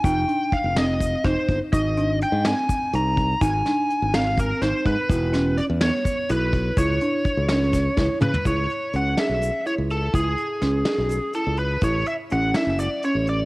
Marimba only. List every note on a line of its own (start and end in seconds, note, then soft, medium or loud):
0.05 0.22 D#4 medium
0.28 0.63 D4 medium
0.77 1.12 C4 medium
1.25 1.60 D#4 medium
1.74 1.91 D#4 medium
1.97 2.32 D4 medium
2.45 2.81 C4 medium
2.94 3.29 D#4 medium
3.41 3.59 D#4 medium
3.66 4.01 D4 medium
4.14 4.49 C4 medium
4.63 4.97 D#4 medium
5.10 5.28 E4 medium
5.33 5.68 C#4 medium
5.81 6.17 B3 medium
6.30 6.65 E4 medium
6.78 6.95 E4 medium
7.02 7.37 D4 medium
7.50 7.85 C#4 medium
7.98 8.33 E4 medium
8.46 8.81 E4 medium
8.94 9.12 C#4 medium
9.19 9.54 G#4 medium
9.66 10.01 E4 medium
10.13 10.49 E4 medium
10.62 10.80 C#4 medium
10.86 11.22 G#4 medium
11.35 11.70 E4 medium
11.83 12.18 E4 medium
12.32 12.49 C#4 medium
12.55 12.90 E4 medium
13.05 13.39 C#4 medium